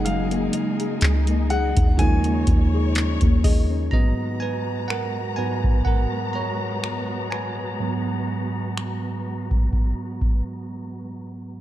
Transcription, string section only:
0.00 3.88 G#3 medium
0.00 3.88 D#4 medium
0.00 1.95 G#4 medium
1.99 3.90 C#5 medium
3.92 11.61 G#3 medium
3.92 11.61 B3 medium
3.92 11.61 F#4 medium
3.92 11.61 A#5 medium

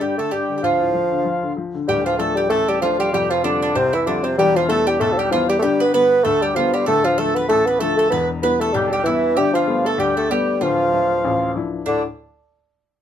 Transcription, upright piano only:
0.01 0.18 G2 medium
0.18 0.31 D3 medium
0.31 0.49 G2 soft
0.50 0.63 D3 medium
0.63 1.84 D2 medium
0.80 0.94 A2 medium
0.94 1.11 F3 soft
1.11 1.25 D3 medium
1.25 1.42 F3 medium
1.43 1.56 D3 medium
1.57 1.74 F3 medium
1.74 1.88 D3 medium
1.88 3.09 D1 medium
1.88 2.19 D2 medium
2.19 2.44 F3 soft
2.19 2.44 A3 soft
2.19 2.45 D4 medium
2.51 2.81 A1 medium
2.82 3.07 F3 soft
2.82 3.07 A3 soft
2.82 3.07 D4 medium
3.13 4.34 F1 medium
3.13 3.43 F2 medium
3.44 3.69 F3 soft
3.44 3.69 G3 soft
3.44 3.69 C4 medium
3.75 4.06 C2 medium
4.06 4.31 F3 medium
4.06 4.32 G3 medium
4.06 4.32 C4 medium
4.38 5.59 E1 medium
4.38 4.68 E2 medium
4.68 4.94 E3 soft
4.68 4.94 G3 soft
4.68 4.94 B3 soft
5.00 5.30 B1 medium
5.31 5.56 E3 medium
5.31 5.56 G3 soft
5.31 5.57 B3 medium
5.63 6.83 G1 medium
5.63 5.93 G2 medium
5.94 6.19 D3 soft
5.94 6.19 G3 soft
5.94 6.19 B3 medium
6.26 6.56 D2 medium
6.56 6.81 D3 medium
6.56 6.81 G3 soft
6.56 6.81 B3 medium
6.88 8.08 D1 medium
6.88 7.18 D2 medium
7.19 7.44 D3 soft
7.19 7.44 F3 soft
7.19 7.44 A3 medium
7.50 7.80 A1 medium
7.81 8.06 D3 medium
7.81 8.06 F3 soft
7.81 8.06 A3 medium
8.12 9.33 E1 medium
8.12 8.42 E2 medium
8.43 8.68 E3 medium
8.43 8.68 G3 soft
8.43 8.69 B3 soft
8.74 9.05 B1 medium
9.05 9.30 E3 soft
9.05 9.31 G3 soft
9.05 9.31 B3 medium
9.36 10.57 G1 medium
9.36 9.67 G2 medium
9.67 9.92 G3 soft
9.67 9.92 A3 soft
9.67 9.93 B3 soft
9.98 10.29 D2 medium
10.30 10.55 G3 soft
10.30 10.55 A3 soft
10.30 10.55 B3 medium
10.61 11.82 D1 medium
10.61 10.91 D2 medium
10.92 11.17 F3 soft
10.92 11.18 D4 soft
10.92 11.18 E5 soft
11.25 11.54 A1 medium
11.56 11.80 F3 soft
11.56 11.81 D4 soft
11.56 11.81 E4 medium
11.87 12.03 D2 soft
11.87 12.04 A2 medium

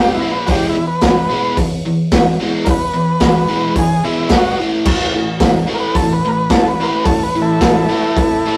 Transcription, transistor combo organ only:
0.00 0.12 G4 medium
0.14 0.31 E4 loud
0.31 0.49 B4 medium
0.46 0.49 F#4 medium
0.51 0.67 G4 medium
0.69 0.86 E4 medium
0.87 1.04 B4 medium
1.02 1.05 A#4 medium
1.07 1.58 B4 loud
2.65 2.68 A#4 medium
2.70 3.75 B4 loud
3.79 4.04 G#4 medium
4.05 4.31 E4 medium
4.32 4.58 F#4 medium
5.74 5.77 A#4 medium
5.80 5.97 B4 medium
5.95 6.14 A4 loud
6.13 6.31 B4 medium
6.28 6.31 A#4 medium
6.32 6.50 B4 loud
6.50 6.69 A4 medium
6.68 6.86 B4 loud
6.83 6.87 A#4 medium
6.88 7.06 B4 loud
7.04 7.23 A4 loud
7.23 7.42 B4 medium
7.42 8.57 E4 medium
7.42 8.57 A4 medium

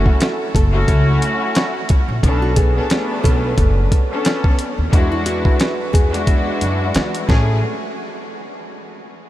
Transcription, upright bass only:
0.55 0.82 F#1 loud
0.88 1.16 C#2 loud
2.08 2.21 A#1 loud
2.23 2.78 B1 loud
3.25 3.52 B1 loud
3.58 3.85 F#1 loud
4.78 4.90 D#2 medium
4.93 5.48 E2 loud
5.94 6.49 E2 loud
6.62 6.89 F#2 loud
6.95 7.23 E3 loud
7.29 7.60 A1 loud

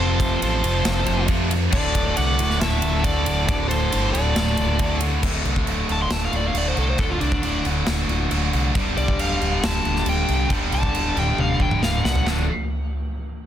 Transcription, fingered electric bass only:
0.00 0.34 F1 loud
0.41 0.60 A1 loud
0.64 0.82 F1 loud
0.85 1.04 F1 medium
1.07 1.26 F1 medium
1.29 1.66 F2 medium
1.73 2.10 D1 loud
2.17 2.35 C2 medium
2.40 2.58 D1 medium
2.62 2.80 D1 medium
2.84 3.02 D1 loud
3.05 3.23 D2 medium
3.27 3.45 D1 medium
3.49 3.86 D1 medium
3.94 4.12 G1 loud
4.15 4.33 D1 loud
4.37 4.55 D1 loud
4.59 4.77 D1 medium
4.80 5.17 D2 medium
5.24 5.38 D1 medium
5.45 5.60 C2 medium
5.67 5.82 D1 medium
5.89 6.04 D1 medium
6.10 6.25 D1 medium
6.33 6.48 D1 medium
6.54 6.69 D1 medium
6.77 6.92 C2 medium
6.99 7.14 D1 medium
7.21 7.36 C2 medium
7.44 7.58 D1 medium
7.65 7.80 D1 medium
7.88 8.02 D1 medium
8.09 8.23 D1 medium
8.32 8.46 D1 medium
8.53 8.68 C2 medium
8.76 8.90 D1 medium
8.97 9.12 C2 medium
9.18 9.33 D1 medium
9.42 9.56 D1 medium
9.63 9.78 D1 medium
9.85 10.00 D1 medium
10.06 10.21 D1 medium
10.29 10.43 C2 medium
10.51 10.65 D1 medium
10.72 10.87 C2 medium
10.95 11.09 D1 medium
11.16 11.31 D1 loud
11.38 11.53 D1 medium
11.60 11.75 D1 medium
11.82 11.97 D1 medium
12.04 12.19 C2 medium
12.26 12.46 D1 medium

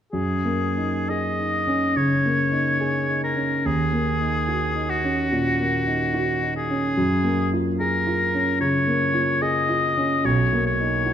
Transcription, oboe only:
0.12 1.11 G#4 soft
1.09 1.98 D#5 soft
1.96 3.23 C#5 soft
3.23 3.68 A#4 soft
3.66 4.92 G#4 soft
4.90 6.56 F#4 soft
6.56 7.50 G#4 soft
7.79 8.57 A#4 soft
8.61 9.43 C#5 soft
9.42 10.27 D#5 soft
10.25 10.66 C#5 soft
10.66 11.13 C#5 soft

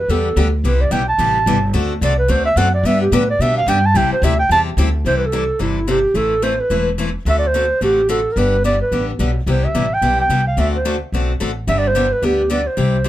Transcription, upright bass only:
0.08 0.35 E2 medium
0.36 0.63 D2 medium
0.64 0.90 C2 medium
0.91 1.18 B1 medium
1.18 1.45 A1 medium
1.46 1.73 G1 medium
1.74 2.01 D2 medium
2.01 2.28 C2 medium
2.29 2.55 D2 medium
2.56 2.83 F#2 medium
2.83 3.11 G2 medium
3.12 3.38 A2 medium
3.39 3.66 B2 medium
3.66 3.93 G2 loud
3.94 4.09 C2 medium
4.10 muted upright bass stroke soft
4.22 4.49 D2 medium
4.49 4.76 E2 medium
4.77 5.04 D2 loud
5.05 5.49 C2 medium
5.60 6.04 G1 medium
6.14 6.59 A1 medium
6.70 7.14 E1 medium
7.25 7.70 D2 medium
7.81 8.25 A1 medium
8.36 8.80 G1 medium
8.91 9.15 A1 medium
9.19 9.43 B1 medium
9.46 9.69 C2 medium
9.74 9.98 A1 medium
10.02 10.25 B1 medium
10.29 10.53 C2 medium
10.57 11.01 D2 medium
11.12 11.36 B1 medium
11.40 11.64 A1 medium
11.67 12.12 G1 medium
12.22 12.66 D2 medium
12.77 13.09 C2 medium

